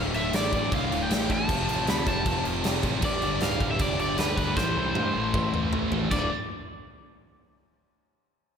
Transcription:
Already playing: D1 D2 A2 D3
0.14 D1 D2 A2 D3 E5, crash
0.32 A1 D2 A2 D3 D5, snare, crash
0.53 A1 D2 A2 D3, kick, crash
0.71 C2 D2 A2 D3 F5, kick, crash
0.91 D1 D2 A2 D3, crash
1.03 G5
1.10 A1 D2 A2 D3, snare, crash
1.28 A1 D2 A2 D3, kick, crash
1.32 A5
1.49 F1 F2 C3 F3, kick, crash
1.68 A1 F2 C3 F3, crash
1.87 D2 F2 C3 F3 B5, snare, crash
2.06 F1 F2 C3 F3 A5, kick, crash
2.25 F1 F2 C3 F3, kick, crash
2.44 F1 F2 C3 F3, crash
2.63 F1 F2 C3 F3, snare, crash
2.83 A1 F2 C3 F3, kick, crash
3.01 G1 G2 D3 G3 D5, kick, crash
3.21 G1 G2 D3 G3, crash
3.41 D1 G2 D3 G3 F5, snare, crash
3.60 D1 G2 D3 G3, kick, crash
3.71 E5
3.79 F1 G2 D3 G3 D5, kick, crash
3.99 G1 G2 D3 G3 D5, crash
4.18 D2 G2 D3 G3 B4, snare, crash
4.37 D2 G2 D3 G3 B4, kick, crash
4.57 A1 A2 E3 A3 C5, kick, snare
4.76 C2 A2 E3 A3
4.95 G2 A2 E3 A3, high tom
5.15 A1 A2 E3 A3
5.33 A1 A2 E3 A3, kick, mid tom
5.53 A1 A2 E3 A3, mid tom
5.72 A1 A2 E3 A3, floor tom
5.91 A1 A2 E3 A3, floor tom
6.11 D1 D2 A2 D3 D5, kick, crash

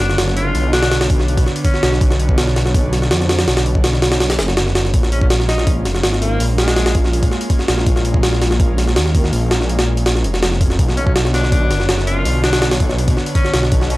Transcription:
Already playing: D3 B3 D4 C#5
0.00 F#1, snare, open hi-hat
0.09 snare
0.18 F#1, snare, open hi-hat
0.28 snare
0.37 F4, open hi-hat
0.55 B1, open hi-hat
0.73 D4, snare, open hi-hat
0.83 snare, open hi-hat
0.91 snare, open hi-hat
1.01 snare, open hi-hat
1.10 kick, open hi-hat
1.19 snare
1.28 open hi-hat
1.37 kick, open hi-hat
1.46 snare
1.56 open hi-hat
1.64 C#4, kick, open hi-hat
1.74 snare
1.83 B1, snare, open hi-hat
1.92 snare
2.01 B1, kick, open hi-hat
2.11 snare
2.20 open hi-hat
2.29 kick
2.38 snare, open hi-hat
2.47 snare
2.56 snare, open hi-hat
2.66 snare
2.74 kick, open hi-hat
2.93 snare, open hi-hat
3.02 snare
3.11 F2, snare, open hi-hat
3.21 snare
3.29 snare, open hi-hat
3.39 snare, open hi-hat
3.48 B1, snare, open hi-hat
3.57 snare, open hi-hat
3.66 open hi-hat
3.75 kick
3.84 snare, open hi-hat
3.93 snare
4.02 snare, open hi-hat
4.12 snare, open hi-hat
4.20 snare, open hi-hat
4.30 snare, open hi-hat
4.39 F#1, snare, open hi-hat
4.48 snare
4.57 snare, open hi-hat
4.67 snare
4.75 snare, open hi-hat
4.85 snare
4.93 A#1 G#3 A#3 C#4 F4, kick, open hi-hat
5.03 snare
5.12 C#4, open hi-hat
5.21 C#4, kick
5.30 snare, open hi-hat
5.40 snare
5.49 D#4, snare, open hi-hat
5.58 snare
5.67 kick, open hi-hat
5.85 F1, snare, open hi-hat
5.95 snare
6.03 G#1, snare, open hi-hat
6.13 snare
6.22 A#3, open hi-hat
6.40 A#1, open hi-hat
6.58 G#3, snare, open hi-hat
6.68 snare, open hi-hat
6.76 snare, open hi-hat
6.86 snare, open hi-hat
6.95 kick, open hi-hat
7.04 snare
7.13 open hi-hat
7.23 kick, open hi-hat
7.32 snare
7.41 open hi-hat
7.50 kick, open hi-hat
7.59 snare
7.68 A#1, snare, open hi-hat
7.78 snare
7.86 A#1, kick, open hi-hat
7.96 snare
8.05 open hi-hat
8.14 kick
8.23 snare, open hi-hat
8.33 snare
8.41 snare, open hi-hat
8.51 snare
8.60 kick, open hi-hat
8.78 snare, open hi-hat
8.88 snare
8.96 D#2, snare, open hi-hat
9.06 snare
9.15 kick, open hi-hat
9.24 snare
9.33 A#1, open hi-hat
9.51 snare, open hi-hat
9.61 snare
9.69 open hi-hat
9.79 snare, open hi-hat
9.97 open hi-hat
10.06 snare, open hi-hat
10.15 snare
10.24 F1, open hi-hat
10.34 snare
10.43 snare, open hi-hat
10.52 snare
10.61 kick, open hi-hat
10.70 snare
10.79 B1 D3 B3 D4 C#5, kick, open hi-hat
10.89 snare
10.97 C#4, open hi-hat
11.06 C#4, kick
11.16 snare, open hi-hat
11.25 snare
11.34 D4, snare, open hi-hat
11.43 snare
11.52 D4, kick, open hi-hat
11.70 F#1, snare, open hi-hat
11.80 snare
11.89 F#1, snare, open hi-hat
11.98 snare
12.07 F4, open hi-hat
12.25 B1, open hi-hat
12.44 D4, snare, open hi-hat
12.53 snare, open hi-hat
12.62 snare, open hi-hat
12.71 snare, open hi-hat
12.80 kick, open hi-hat
12.90 snare
12.98 open hi-hat
13.08 kick, open hi-hat
13.17 snare
13.26 open hi-hat
13.35 C#4, kick, open hi-hat
13.45 snare
13.53 B1, snare, open hi-hat
13.63 snare
13.72 B1, kick, open hi-hat
13.81 snare
13.90 open hi-hat

